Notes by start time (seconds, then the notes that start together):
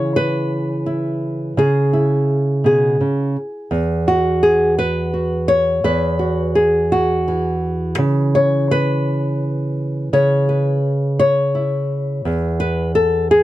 Already playing: C#3 E3 C#5
0.16 B4
0.86 E4
1.57 C#3 G#4
1.93 E4
2.64 B2 G#4
3.01 C#3
3.71 E2
4.08 F#4
4.43 G#4
4.79 B4
5.14 F#4
5.48 C#5
5.84 E2 B4
6.19 F#4
6.55 G#4
6.92 F#4
7.28 E3
7.98 C#3
8.35 C#5
8.71 B4
10.13 C#3 C#5
10.49 B4
11.20 C#5
11.55 E4
12.25 E2
12.60 B4
12.95 A4
13.31 G#4